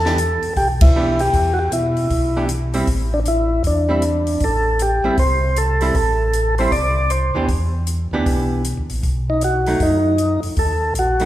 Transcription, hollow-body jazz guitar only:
0.05 0.17 E3 medium
0.05 0.17 B3 medium
0.05 0.18 D4 medium
0.05 0.18 G4 medium
0.96 1.18 E3 medium
0.96 1.18 B3 medium
0.96 1.18 D4 medium
0.96 1.18 G4 medium
2.36 2.48 E3 soft
2.36 2.48 B3 medium
2.36 2.48 D4 medium
2.36 2.49 G4 medium
2.74 2.86 G3 medium
2.74 2.86 C4 medium
2.74 2.87 E4 medium
3.89 4.01 G3 medium
3.89 4.02 C4 medium
3.89 4.02 E4 medium
5.04 5.17 G3 medium
5.04 5.17 C4 medium
5.04 5.17 E4 medium
5.81 5.94 G3 medium
5.81 5.94 C4 medium
5.81 5.94 E4 medium
6.59 6.71 G3 medium
6.59 6.71 C4 medium
6.59 6.72 E4 medium
7.35 7.47 E3 medium
7.35 7.48 B3 medium
7.35 7.48 D4 medium
7.35 7.48 G4 medium
8.13 8.62 E3 medium
8.13 8.62 B3 medium
8.13 8.62 D4 medium
8.13 8.63 G4 medium
9.67 10.16 F#3 medium
9.67 10.16 A3 medium
9.67 10.17 D#4 medium
11.20 11.25 F#3 medium
11.20 11.25 A3 medium
11.20 11.25 D#4 medium

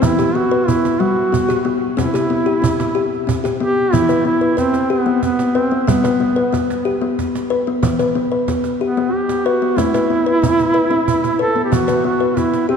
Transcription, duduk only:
0.03 0.37 E4 medium
0.35 0.69 F#4 medium
0.68 1.01 E4 medium
1.00 1.71 F#4 medium
1.97 3.24 E4 medium
3.60 3.95 G4 medium
3.93 4.25 E4 medium
4.26 4.56 E4 medium
4.58 4.92 C4 medium
4.90 5.23 B3 medium
5.23 5.57 B3 medium
5.55 5.81 C4 medium
5.81 5.90 C4 soft
5.89 6.61 B3 medium
8.80 9.15 B3 medium
9.14 9.48 G4 medium
9.46 9.80 F#4 medium
9.78 11.40 E4 medium
11.41 11.64 A4 medium
11.64 11.74 G4 medium
11.73 12.04 F#4 medium
12.05 12.29 F#4 medium
12.29 12.39 F#4 medium
12.37 12.68 E4 medium
12.69 12.77 C4 medium

